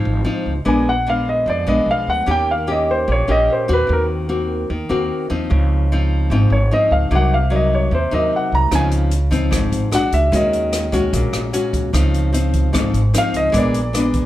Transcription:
Already playing: G#2 F3 C4 D#4
0.05 G#1
0.25 F3 C4 D#4
0.46 C#2
0.65 A#1 A#2 G#3 B3 D4 G#5
0.89 F#5
1.07 G#3 B3 D4 F5
1.29 D#5
1.46 F2 F3 D5
1.67 A#1 G#3 B3 D4 D#5
1.86 B1
1.91 F5
2.07 D2 F#5
2.26 D#2 D#3 A#3 C#4 G4
2.31 G5
2.51 F5
2.67 A#3 C#4 G4
2.72 D#5
2.91 C5
3.08 A#1 A#2
3.12 C#5
3.28 A#1 A#3 C#4 G4 D#5
3.53 C5
3.68 D#2 A#3 C4 F#4
3.73 B4
3.87 D#2 D#3
3.93 A#4
4.29 A#3 C4 F#4
4.70 D#2 D#3
4.89 D#2 A#3 C4 F#4
5.30 D#2 F3 C4 D#4
5.50 C#2 C#3
5.92 F3 C4 D#4
6.30 G#1 G#2 F3 C4 D#4
6.50 G#1 C#5
6.71 F3 C4 D#4 D#5
6.91 C#2 F5
7.11 C2 C3 F#3 A#3 D#4
7.16 F#5
7.34 F5
7.50 F#3 A#3 D#4 D5
7.56 D#5
7.75 C#5
7.91 D#2 C3 C5
8.11 D#2 F#3 A#3 D#4 D#5
8.36 F#5
8.52 C2 A#5
8.71 C#2 C#3 F3 C4 D#4 G#5, kick, cross-stick, closed hi-hat
8.91 closed hi-hat
9.11 closed hi-hat
9.31 F3 C4 D#4, kick, closed hi-hat
9.51 G#1 G#2, kick, cross-stick, closed hi-hat
9.72 G#1, closed hi-hat
9.91 A#1 G#3 D4 F#4 F#5, cross-stick, closed hi-hat
10.12 C#2 E5, closed hi-hat
10.32 D#2 D#3 G#3 C#4 F#4 D#5, kick, closed hi-hat
10.53 closed hi-hat
10.73 cross-stick, closed hi-hat
10.92 G#3 C#4 F#4, kick, closed hi-hat
11.13 A#1 A#2, kick, closed hi-hat
11.33 A#1, cross-stick, closed hi-hat
11.53 G#3 C#4 F#4, closed hi-hat
11.73 D#2, kick, closed hi-hat
11.93 C#2 C#3 F3 C4 D#4, kick, cross-stick, closed hi-hat
12.14 closed hi-hat
12.33 F3 C4 D#4, closed hi-hat
12.53 kick, closed hi-hat
12.73 G#1 G#2 F3 C4 D#4, kick, cross-stick, closed hi-hat
12.94 G#1, closed hi-hat
13.14 F3 C4 D#4, cross-stick, closed hi-hat
13.18 F5
13.33 C#2 D#5, closed hi-hat
13.52 A#1 A#2 G#3 B3 D4, kick, closed hi-hat
13.58 D5
13.74 closed hi-hat
13.93 G#3 B3 D4, cross-stick, closed hi-hat
14.14 kick, closed hi-hat

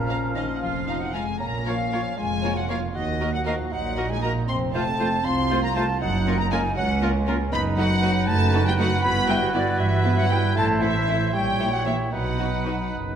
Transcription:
Already playing: A#1 A#2 F3 C#4 A#4 F5 A#5
0.08 C#4 F5 A#5
0.34 D#3 C#4 D#5 F5 A#5
0.54 F#5
0.61 F1 F2 F3 F4 F5
0.87 D#4 F5 A#5
1.00 F#3 F#5
1.13 G#3 F4 F5 G#5 A#5
1.39 A#1 A#2 A#3 C#4 A#5
1.65 F3 A#3 F4 A#4 C#5 F5
1.92 A#3 F4 A#4 C#5
2.17 F1 F2 G#3 F4 G#5
2.43 A#3 F4 A#4 C#5
2.55 F#3 F#5
2.69 F3 A#3 F4 A#4 C#5 F5
2.94 D#2 D#3 F#4 D#5
3.20 A#3 F#4 A#4 D#5
3.33 F#3 F#5
3.45 F3 A#3 F#4 A#4 D#5 F5
3.71 A#1 A#2 F#3 D#4 F#5
3.97 A#3 F#4 A#4 D#5
4.10 G#3 G#5
4.21 A#3 F#4 A#4 D#5 A#5
4.47 F1 F2 C4 C6
4.74 A3 F4 C5 A5
4.99 A3 F4 C5
5.24 C2 C4 F4 C6
5.51 A3 F4 C5
5.63 A#3 A#5
5.75 A3 F4 C5 A5
6.01 F#1 F#2 F#3 D#4 F#5
6.27 A#3 C#4 F4 A#4
6.38 A#3 A#5
6.49 G#3 A#3 C#4 F4 A#4 G#5
6.75 C#2 F#3 C#4 F#5
7.02 A#3 C#4 F4 A#4
7.27 A#3 C#4 F4 A#4
7.52 F#1 F#2 B3 D#4 B4 B5
7.77 F#3 A3 D#4 F#4 B4 F#5
8.03 A3 D#4 F#4 B4
8.28 F#1 F#2 A3 F#4 A5
8.54 A3 D#4 F#4 B4
8.65 G3 G5
8.78 F#3 A3 D#4 F#4 B4 F#5
9.04 G1 G2 B3 E4 B5
9.29 G3 B3 E4 B4 G5
9.54 D3 B3 E4 B4 D5
9.79 G1 G2 E3 E5
10.04 B3 E4 B4
10.18 F#3 F#5
10.30 G3 B3 E4 B4 G5
10.56 A1 A2 A3 E4 C5 A5
10.80 E3 C4 E4 A4 E5
11.08 C4 E4 A4
11.33 A#1 A#2 G3 G4 C#5 G5
11.60 A#3 E4 C#5
11.72 F#3 F#5
11.84 E3 A#3 E4 C#5 E5
12.11 B1 B2 F#3 D#4 B4 F#5
12.39 F#3 D#4 F#4 B4
12.65 F#3 D#4 F#4 B4
12.92 F#1 F#2

